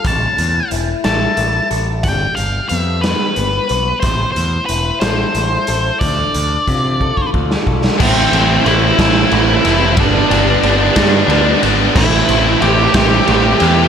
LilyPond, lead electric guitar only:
\new Staff \with { instrumentName = "Lead electric guitar" } { \time 6/8 \key a \minor \tempo 4. = 60 a''4 r8 a''4 r8 | g''8 f''8 e''8 b'4. | c''8 c''8 b'8 c''4. | d''2 r4 |
<c' c''>4 <e' e''>8 <e' e''>4. | <d' d''>2~ <d' d''>8 r8 | <e' e''>4 <g' g''>8 <g' g''>4. | }